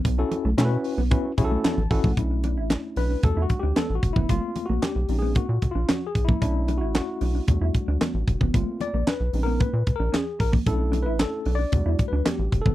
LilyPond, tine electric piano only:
\new Staff \with { instrumentName = "Tine electric piano" } { \time 4/4 \key b \minor \tempo 4 = 113 << { r2. a''8 fis''8 | r4. b'8 \tuplet 3/2 { a'8 fis'8 g'8 a'8 fis'8 e'8 } | \tuplet 3/2 { r4 fis'8 g'4 gis'8 fis'4 eis'8 fis'8 gis'8 e'8 } | \tuplet 3/2 { r4 fis'8 } fis'4 r2 |
r8 d''8 \tuplet 3/2 { b'4 ais'8 b'4 ais'8 } gis'8 ais'8 | \tuplet 3/2 { a'4 b'8 a'4 d''8~ d''4 b'8 g'4 a'8 } | } \\ { r16 <cis' e' fis' a'>8 r16 <cis' e' fis' a' b'>8. r16 <cis' e' fis' b'>8 <cis' e' fis' gis' a'>8. r16 <cis' e' fis' a'>8 | <a cis' d' e'>2 <g a d' fis'>2 | <a bes c' f'>4. <gis bis cis' dis'>8 r2 | <a cis' d' e'>2 <g a d' fis'>2 |
<a bes c' f'>8 r4 <gis bis cis' dis'>8 r2 | <a cis' d' e'>4. r8 <g a d' fis'>2 | } >> }